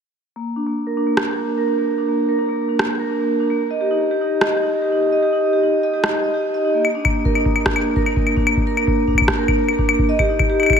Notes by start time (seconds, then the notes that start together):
0.36 A#3
0.56 D4
0.66 A#3
0.87 A#4
0.97 D4
1.07 A#3
1.17 cross-stick
1.27 D4
1.37 A#3
1.58 A#4
1.68 D4
1.78 A#3
1.98 D4
2.08 A#3
2.29 A#4
2.39 D4
2.49 A#3
2.69 D4
2.79 A#3, cross-stick
3.00 A#4
3.10 D4
3.20 A#3
3.40 D4
3.50 A#3
3.71 D#5
3.81 G4
3.91 D#4
4.11 G4
4.21 D#4
4.41 D#5, cross-stick
4.52 G4
4.62 D#4
4.82 G4
4.92 D#4
5.12 D#5
5.23 G4
5.33 D#4
5.53 G4
5.63 D#4
5.83 D#5
5.94 G4
6.04 D#4, cross-stick
6.24 D#5
6.34 G4
6.54 D#5
6.64 D#4
6.75 A#3
6.85 claves
6.95 D4
7.05 A#3, kick, claves
7.25 A#4, kick
7.35 D4, claves
7.45 A#3, kick
7.56 claves
7.66 D4, kick, cross-stick
7.76 A#3, claves
7.96 A#4, kick
8.06 D4, claves
8.16 A#3, kick
8.27 claves
8.37 D4, kick
8.47 A#3, claves
8.57 kick
8.67 A#4
8.77 D4, claves
8.87 A#3, kick
9.08 D4, kick
9.14 A#3, kick, claves
9.21 kick
9.28 kick, cross-stick
9.38 A#4
9.48 D4, kick, claves
9.58 A#3
9.68 claves
9.79 D4, kick
9.89 A#3, claves
9.99 kick
10.09 D#5
10.19 G4, kick, claves
10.29 D#4
10.39 kick, claves
10.50 G4
10.60 D#4, claves
10.63 claves
10.66 claves
10.70 kick, claves
10.73 claves
10.77 claves